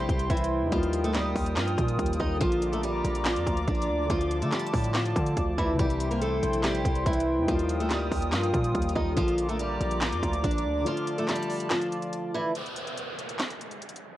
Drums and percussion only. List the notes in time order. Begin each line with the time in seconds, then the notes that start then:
0.09 kick, closed hi-hat
0.19 closed hi-hat
0.30 kick, closed hi-hat
0.37 closed hi-hat
0.44 closed hi-hat
0.72 kick, closed hi-hat
0.83 closed hi-hat
0.93 closed hi-hat
1.04 closed hi-hat
1.14 snare, clap, closed hi-hat
1.35 kick, open hi-hat
1.46 closed hi-hat
1.56 snare, clap, closed hi-hat
1.67 closed hi-hat
1.78 kick, closed hi-hat
1.88 closed hi-hat
1.99 kick, closed hi-hat
2.06 closed hi-hat
2.13 closed hi-hat
2.20 kick
2.41 kick, closed hi-hat
2.52 closed hi-hat
2.62 closed hi-hat
2.73 closed hi-hat
2.83 closed hi-hat
3.05 closed hi-hat
3.15 closed hi-hat
3.25 snare, clap, closed hi-hat
3.36 closed hi-hat
3.47 kick, closed hi-hat
3.57 closed hi-hat
3.68 kick, closed hi-hat
3.75 closed hi-hat
3.82 closed hi-hat
4.10 kick, closed hi-hat
4.21 closed hi-hat
4.31 closed hi-hat
4.42 closed hi-hat
4.52 snare, clap, closed hi-hat
4.59 closed hi-hat
4.66 closed hi-hat
4.73 kick, open hi-hat
4.84 closed hi-hat
4.94 snare, clap, closed hi-hat
5.05 closed hi-hat
5.16 kick, closed hi-hat
5.26 closed hi-hat
5.37 kick, closed hi-hat
5.58 kick
5.79 kick, closed hi-hat
5.90 closed hi-hat
6.00 closed hi-hat
6.11 closed hi-hat
6.21 closed hi-hat
6.43 closed hi-hat
6.53 closed hi-hat
6.63 snare, clap, closed hi-hat
6.75 closed hi-hat
6.85 kick, closed hi-hat
6.95 closed hi-hat
7.06 kick, closed hi-hat
7.13 closed hi-hat
7.20 closed hi-hat
7.48 kick, closed hi-hat
7.59 closed hi-hat
7.69 closed hi-hat
7.80 closed hi-hat
7.90 snare, clap, closed hi-hat
8.12 kick, open hi-hat
8.22 closed hi-hat
8.32 snare, clap, closed hi-hat
8.44 closed hi-hat
8.54 kick, closed hi-hat
8.64 closed hi-hat
8.75 kick, closed hi-hat
8.82 closed hi-hat
8.89 closed hi-hat
8.96 kick
9.17 kick, closed hi-hat
9.28 closed hi-hat
9.38 closed hi-hat
9.49 closed hi-hat
9.59 closed hi-hat
9.81 closed hi-hat
9.91 closed hi-hat
10.01 snare, clap, closed hi-hat
10.13 closed hi-hat
10.23 kick, closed hi-hat
10.33 closed hi-hat
10.44 kick, closed hi-hat
10.51 closed hi-hat
10.58 closed hi-hat
10.86 closed hi-hat
10.97 closed hi-hat
11.07 closed hi-hat
11.18 closed hi-hat
11.28 snare, clap, closed hi-hat
11.36 closed hi-hat
11.43 closed hi-hat
11.50 open hi-hat
11.60 closed hi-hat
11.70 snare, clap, closed hi-hat
11.82 closed hi-hat
11.92 closed hi-hat
12.02 closed hi-hat
12.13 closed hi-hat
12.55 closed hi-hat
12.66 closed hi-hat
12.76 closed hi-hat
12.87 closed hi-hat
12.97 closed hi-hat
13.19 closed hi-hat
13.29 closed hi-hat
13.39 snare, clap, closed hi-hat
13.51 closed hi-hat
13.61 closed hi-hat
13.71 closed hi-hat
13.82 closed hi-hat
13.89 closed hi-hat
13.96 closed hi-hat